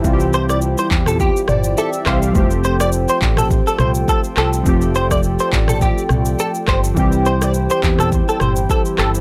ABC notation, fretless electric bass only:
X:1
M:4/4
L:1/16
Q:"Swing 16ths" 1/4=104
K:F
V:1 name="Fretless electric bass" clef=bass
C,,4- C,, z E,,3 z G,,,2 z2 C,,2 | F,,,4- F,,, z A,,,3 z C,,2 z2 C,,2 | F,,,4- F,,, z A,,,3 z C,,2 z2 G,,,2 | C,,4- C,, z E,,3 z G,,,2 z2 G,,,2 |]